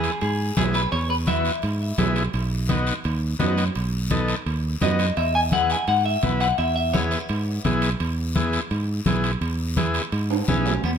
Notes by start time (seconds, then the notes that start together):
Already playing: B3 E4 G#4
0.04 high timbale, short guiro
0.21 G#2 G#4, high timbale, long guiro
0.57 B1 B3 E4 G#4, high conga, high timbale, low timbale, short guiro
0.74 B4, high timbale, short guiro
0.92 E2 C#5, high timbale, long guiro
1.10 B4
1.27 B3 E4 F#4 E5, high conga, high timbale, short guiro
1.45 high timbale, short guiro
1.62 G#2, high timbale, long guiro
1.98 B1 B3 E4 G#4, high conga, high timbale, low timbale, short guiro
2.16 high timbale, short guiro
2.34 B1, high timbale, long guiro
2.69 B3 D#4 F#4, high conga, high timbale, short guiro
2.87 high timbale, short guiro
3.04 D#2, high timbale, long guiro
3.39 F#2 B3 D#4 F#4, high conga, high timbale, low timbale, short guiro
3.58 high timbale, short guiro
3.75 B1, high timbale, long guiro
4.11 B3 D#4 A4, high conga, high timbale, short guiro
4.28 high timbale, short guiro
4.46 D#2, high timbale, long guiro
4.81 F#2 B3 D#4 F#4 D#5, high conga, high timbale, low timbale, short guiro
4.99 high timbale, short guiro
5.17 E2 E5, high timbale, long guiro
5.35 G#5
5.52 B3 E4 G#4 F#5, high conga, high timbale, short guiro
5.70 G#5, high timbale, short guiro
5.87 G#2 F#5, high timbale, long guiro
6.05 E5
6.23 B1 B3 E4 B4, high conga, high timbale, short guiro
6.40 F#5, high timbale, short guiro
6.58 E2 E5, high timbale, long guiro
6.76 E5
6.93 B3 E4 G#4 C#5, high conga, high timbale, short guiro
7.11 B4, high timbale, short guiro
7.29 G#2, high timbale, long guiro
7.64 B1 B3 E4 G#4, high conga, high timbale, short guiro
7.82 high timbale, short guiro
8.00 E2, high timbale, long guiro
8.35 B3 E4 G#4, high conga, high timbale, short guiro
8.53 high timbale, short guiro
8.71 G#2, high timbale, long guiro
9.06 B1 B3 E4 G#4, high conga, high timbale, short guiro
9.24 high timbale, short guiro
9.41 E2, high timbale, long guiro
9.77 B3 E4 G#4, high conga, high timbale, short guiro
9.94 high timbale, short guiro
10.12 G#2, high timbale, long guiro
10.30 high timbale
10.48 B1 B3 C#4 E4 G#4, high conga, short guiro
10.66 low timbale, short guiro
10.83 E2 B3, high timbale, long guiro